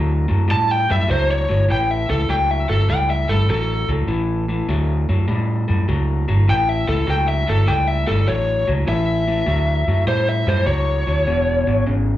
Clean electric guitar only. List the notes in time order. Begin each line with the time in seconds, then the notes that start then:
Already playing: A2 F#3
0.28 A2 F#3
0.48 A2 G3
0.89 A2 G3
1.08 A2 F#3
1.49 A2 F#3
1.68 A2 E3
2.09 A2 E3
2.29 A2 F#3
2.69 A2 F#3
2.89 A2 G3
3.29 A2 G3
3.49 A2 F#3
3.89 A2 F#3
4.08 A2 E3
4.48 A2 E3
4.68 A2 F#3
5.09 A2 F#3
5.28 A2 G3
5.68 A2 G3
5.88 A2 F#3
6.28 A2 F#3
6.48 A2 E3
6.88 A2 E3
7.07 A2 F#3
7.47 A2 F#3
7.66 A2 G3
8.07 A2 G3
8.26 A2 F#3
8.67 A2 F#3
8.87 A2 E3
9.27 A2 E3
9.46 A2 F#3
9.88 A2 F#3
10.07 A2 G3
10.47 A2 G3
10.66 A2 F#3
11.07 A2 F#3
11.27 E2 B2
11.67 E2 B2
11.87 E2 C#3